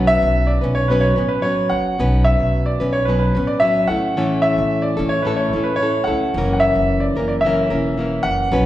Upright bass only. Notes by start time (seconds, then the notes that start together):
Already playing: B1
0.23 B1
0.64 B1
1.18 A1
1.72 F#1
2.00 B1
2.40 B1
2.81 B1
3.36 A1
3.90 A1
4.58 A1
4.99 A1
5.53 A1
6.07 C#2
6.34 F#1
6.75 F#1
7.15 F#1
7.70 E1
8.24 F#1
8.51 B1